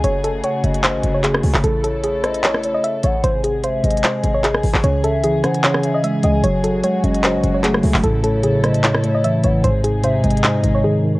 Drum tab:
HH |x-----x-----x-----x--x--x-----x-----x-----o-----|x-----x-----x-----x--x--x-----x-----x-----x-----|x-----x-----x-----x-x-x-x-----x-----x-----o-----|x-----x-----x-----x--x--x-----x-----x-----x-----|
CP |------------------------x-----------x--------x--|------------------------x-----------------------|------------------------x-----------x--------x--|------------------------x-----------------------|
SD |---------------------------------------r--------|------------------r--------r--------------------|---------------------------------------r--------|------------------r--------r--------------------|

HH |x-----x-----x-----x--x--x-----x-----x-----o-----|x-----x-----x-----x--x--x-----x-----x-----x-----|x-----x-----x-----x-x-x-x-----x-----------------|
CP |------------------------x-----------x--------x--|------------------------x-----------------------|------------------------x-----------------------|
SD |---------------------------------------r--------|------------------r--------r--------------------|------------------------------------------------|